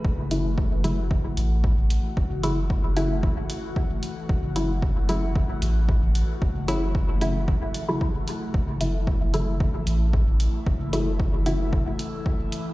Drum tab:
HH |-x-x-x-x|-x-x-x-x|-x-x-x-x|-x-x-x-x|
BD |o-o-o-o-|o-o-o-o-|o-o-o-o-|o-o-o-o-|

HH |-x-x-x-x|-x-x-x-x|
BD |o-o-o-o-|o-o-o-o-|